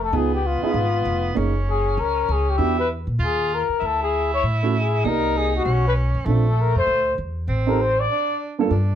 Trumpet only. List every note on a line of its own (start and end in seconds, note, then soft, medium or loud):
0.03 0.17 A4 medium
0.16 0.33 G#4 medium
0.34 0.48 G4 medium
0.46 0.63 F4 medium
0.64 1.32 F4 medium
1.70 2.01 G#4 medium
1.99 2.34 A#4 medium
2.32 2.51 G#4 medium
2.50 2.78 G4 medium
2.79 2.89 B4 medium
3.25 3.56 G#4 medium
3.54 3.88 A#4 medium
3.86 4.02 A4 medium
4.03 4.30 G#4 medium
4.34 4.43 C#5 loud
4.78 5.10 G#4 medium
5.08 5.39 A#4 medium
5.37 5.54 G#4 medium
5.56 5.83 F#4 medium
5.87 5.93 B4 medium
6.49 6.62 A4 medium
6.61 6.77 A#4 medium
6.78 7.16 C5 medium
7.68 7.83 A#4 medium
7.81 8.01 C5 medium
8.00 8.41 D5 medium